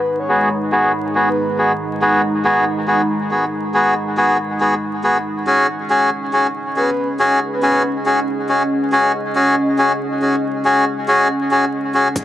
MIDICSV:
0, 0, Header, 1, 6, 480
1, 0, Start_track
1, 0, Tempo, 431655
1, 80, Time_signature, 4, 2, 24, 8
1, 13618, End_track
2, 0, Start_track
2, 0, Title_t, "Soft synth lead"
2, 0, Program_c, 0, 80
2, 0, Note_on_c, 0, 71, 92
2, 192, Note_off_c, 0, 71, 0
2, 219, Note_on_c, 0, 73, 87
2, 558, Note_off_c, 0, 73, 0
2, 1419, Note_on_c, 0, 71, 88
2, 1759, Note_off_c, 0, 71, 0
2, 7519, Note_on_c, 0, 71, 89
2, 7872, Note_off_c, 0, 71, 0
2, 8384, Note_on_c, 0, 71, 95
2, 8721, Note_off_c, 0, 71, 0
2, 13618, End_track
3, 0, Start_track
3, 0, Title_t, "Melodica"
3, 0, Program_c, 1, 22
3, 320, Note_on_c, 1, 59, 90
3, 320, Note_on_c, 1, 66, 84
3, 320, Note_on_c, 1, 68, 103
3, 544, Note_off_c, 1, 59, 0
3, 544, Note_off_c, 1, 66, 0
3, 544, Note_off_c, 1, 68, 0
3, 799, Note_on_c, 1, 68, 98
3, 800, Note_on_c, 1, 59, 90
3, 800, Note_on_c, 1, 66, 83
3, 1023, Note_off_c, 1, 59, 0
3, 1023, Note_off_c, 1, 66, 0
3, 1023, Note_off_c, 1, 68, 0
3, 1280, Note_on_c, 1, 59, 85
3, 1280, Note_on_c, 1, 66, 75
3, 1280, Note_on_c, 1, 68, 93
3, 1436, Note_off_c, 1, 59, 0
3, 1436, Note_off_c, 1, 66, 0
3, 1436, Note_off_c, 1, 68, 0
3, 1760, Note_on_c, 1, 66, 69
3, 1761, Note_on_c, 1, 59, 73
3, 1761, Note_on_c, 1, 68, 87
3, 1916, Note_off_c, 1, 59, 0
3, 1916, Note_off_c, 1, 66, 0
3, 1916, Note_off_c, 1, 68, 0
3, 2241, Note_on_c, 1, 59, 93
3, 2241, Note_on_c, 1, 66, 85
3, 2241, Note_on_c, 1, 68, 105
3, 2464, Note_off_c, 1, 59, 0
3, 2464, Note_off_c, 1, 66, 0
3, 2464, Note_off_c, 1, 68, 0
3, 2721, Note_on_c, 1, 59, 91
3, 2721, Note_on_c, 1, 66, 82
3, 2721, Note_on_c, 1, 68, 102
3, 2944, Note_off_c, 1, 59, 0
3, 2944, Note_off_c, 1, 66, 0
3, 2944, Note_off_c, 1, 68, 0
3, 3199, Note_on_c, 1, 59, 82
3, 3199, Note_on_c, 1, 66, 78
3, 3199, Note_on_c, 1, 68, 92
3, 3355, Note_off_c, 1, 59, 0
3, 3355, Note_off_c, 1, 66, 0
3, 3355, Note_off_c, 1, 68, 0
3, 3679, Note_on_c, 1, 59, 76
3, 3679, Note_on_c, 1, 66, 68
3, 3679, Note_on_c, 1, 68, 83
3, 3835, Note_off_c, 1, 59, 0
3, 3835, Note_off_c, 1, 66, 0
3, 3835, Note_off_c, 1, 68, 0
3, 4159, Note_on_c, 1, 68, 105
3, 4160, Note_on_c, 1, 59, 91
3, 4160, Note_on_c, 1, 66, 83
3, 4383, Note_off_c, 1, 68, 0
3, 4384, Note_off_c, 1, 59, 0
3, 4384, Note_off_c, 1, 66, 0
3, 4640, Note_on_c, 1, 59, 90
3, 4640, Note_on_c, 1, 66, 83
3, 4640, Note_on_c, 1, 68, 99
3, 4864, Note_off_c, 1, 59, 0
3, 4864, Note_off_c, 1, 66, 0
3, 4864, Note_off_c, 1, 68, 0
3, 5121, Note_on_c, 1, 59, 80
3, 5121, Note_on_c, 1, 66, 72
3, 5122, Note_on_c, 1, 68, 88
3, 5276, Note_off_c, 1, 59, 0
3, 5276, Note_off_c, 1, 66, 0
3, 5277, Note_off_c, 1, 68, 0
3, 5600, Note_on_c, 1, 59, 76
3, 5601, Note_on_c, 1, 66, 72
3, 5601, Note_on_c, 1, 68, 87
3, 5756, Note_off_c, 1, 59, 0
3, 5756, Note_off_c, 1, 66, 0
3, 5756, Note_off_c, 1, 68, 0
3, 6080, Note_on_c, 1, 61, 89
3, 6080, Note_on_c, 1, 66, 88
3, 6080, Note_on_c, 1, 68, 102
3, 6303, Note_off_c, 1, 68, 0
3, 6304, Note_off_c, 1, 61, 0
3, 6304, Note_off_c, 1, 66, 0
3, 6560, Note_on_c, 1, 61, 90
3, 6560, Note_on_c, 1, 66, 80
3, 6560, Note_on_c, 1, 68, 98
3, 6784, Note_off_c, 1, 61, 0
3, 6784, Note_off_c, 1, 66, 0
3, 6784, Note_off_c, 1, 68, 0
3, 7041, Note_on_c, 1, 61, 82
3, 7041, Note_on_c, 1, 66, 77
3, 7041, Note_on_c, 1, 68, 89
3, 7196, Note_off_c, 1, 61, 0
3, 7196, Note_off_c, 1, 66, 0
3, 7196, Note_off_c, 1, 68, 0
3, 7520, Note_on_c, 1, 61, 77
3, 7520, Note_on_c, 1, 68, 85
3, 7521, Note_on_c, 1, 66, 68
3, 7676, Note_off_c, 1, 61, 0
3, 7676, Note_off_c, 1, 66, 0
3, 7676, Note_off_c, 1, 68, 0
3, 7999, Note_on_c, 1, 66, 87
3, 8000, Note_on_c, 1, 61, 96
3, 8000, Note_on_c, 1, 68, 108
3, 8223, Note_off_c, 1, 61, 0
3, 8223, Note_off_c, 1, 66, 0
3, 8223, Note_off_c, 1, 68, 0
3, 8479, Note_on_c, 1, 61, 93
3, 8479, Note_on_c, 1, 68, 101
3, 8480, Note_on_c, 1, 66, 81
3, 8703, Note_off_c, 1, 61, 0
3, 8703, Note_off_c, 1, 66, 0
3, 8703, Note_off_c, 1, 68, 0
3, 8960, Note_on_c, 1, 61, 84
3, 8960, Note_on_c, 1, 66, 80
3, 8960, Note_on_c, 1, 68, 94
3, 9116, Note_off_c, 1, 61, 0
3, 9116, Note_off_c, 1, 66, 0
3, 9116, Note_off_c, 1, 68, 0
3, 9440, Note_on_c, 1, 61, 78
3, 9440, Note_on_c, 1, 66, 72
3, 9440, Note_on_c, 1, 68, 84
3, 9596, Note_off_c, 1, 61, 0
3, 9596, Note_off_c, 1, 66, 0
3, 9596, Note_off_c, 1, 68, 0
3, 9919, Note_on_c, 1, 66, 88
3, 9920, Note_on_c, 1, 61, 93
3, 9920, Note_on_c, 1, 68, 104
3, 10143, Note_off_c, 1, 66, 0
3, 10144, Note_off_c, 1, 61, 0
3, 10144, Note_off_c, 1, 68, 0
3, 10400, Note_on_c, 1, 61, 91
3, 10400, Note_on_c, 1, 66, 86
3, 10400, Note_on_c, 1, 68, 102
3, 10624, Note_off_c, 1, 61, 0
3, 10624, Note_off_c, 1, 66, 0
3, 10624, Note_off_c, 1, 68, 0
3, 10880, Note_on_c, 1, 61, 86
3, 10880, Note_on_c, 1, 66, 79
3, 10880, Note_on_c, 1, 68, 95
3, 11036, Note_off_c, 1, 61, 0
3, 11036, Note_off_c, 1, 66, 0
3, 11036, Note_off_c, 1, 68, 0
3, 11361, Note_on_c, 1, 61, 76
3, 11361, Note_on_c, 1, 66, 71
3, 11361, Note_on_c, 1, 68, 84
3, 11516, Note_off_c, 1, 61, 0
3, 11516, Note_off_c, 1, 66, 0
3, 11516, Note_off_c, 1, 68, 0
3, 11841, Note_on_c, 1, 61, 97
3, 11841, Note_on_c, 1, 66, 86
3, 11841, Note_on_c, 1, 68, 105
3, 12064, Note_off_c, 1, 61, 0
3, 12064, Note_off_c, 1, 66, 0
3, 12064, Note_off_c, 1, 68, 0
3, 12321, Note_on_c, 1, 61, 93
3, 12321, Note_on_c, 1, 66, 85
3, 12321, Note_on_c, 1, 68, 102
3, 12544, Note_off_c, 1, 61, 0
3, 12544, Note_off_c, 1, 66, 0
3, 12544, Note_off_c, 1, 68, 0
3, 12800, Note_on_c, 1, 66, 75
3, 12801, Note_on_c, 1, 61, 79
3, 12801, Note_on_c, 1, 68, 91
3, 12956, Note_off_c, 1, 61, 0
3, 12956, Note_off_c, 1, 66, 0
3, 12956, Note_off_c, 1, 68, 0
3, 13281, Note_on_c, 1, 61, 79
3, 13281, Note_on_c, 1, 66, 71
3, 13281, Note_on_c, 1, 68, 86
3, 13436, Note_off_c, 1, 61, 0
3, 13436, Note_off_c, 1, 66, 0
3, 13436, Note_off_c, 1, 68, 0
3, 13618, End_track
4, 0, Start_track
4, 0, Title_t, "Ambient pad"
4, 0, Program_c, 2, 92
4, 0, Note_on_c, 2, 56, 75
4, 0, Note_on_c, 2, 63, 71
4, 0, Note_on_c, 2, 82, 85
4, 5794, Note_off_c, 2, 63, 0
4, 5794, Note_off_c, 2, 82, 0
4, 5795, Note_off_c, 2, 56, 0
4, 5838, Note_on_c, 2, 68, 73
4, 5840, Note_on_c, 2, 61, 77
4, 5840, Note_on_c, 2, 75, 85
4, 13474, Note_off_c, 2, 68, 0
4, 13475, Note_off_c, 2, 61, 0
4, 13475, Note_off_c, 2, 75, 0
4, 13618, End_track
5, 0, Start_track
5, 0, Title_t, "Riser"
5, 0, Program_c, 3, 103
5, 13519, Note_on_c, 3, 60, 79
5, 13618, Note_off_c, 3, 60, 0
5, 13618, End_track
6, 0, Start_track
6, 0, Title_t, "Drums"
6, 13519, Note_on_c, 9, 42, 77
6, 13520, Note_on_c, 9, 36, 112
6, 13618, Note_off_c, 9, 36, 0
6, 13618, Note_off_c, 9, 42, 0
6, 13618, End_track
0, 0, End_of_file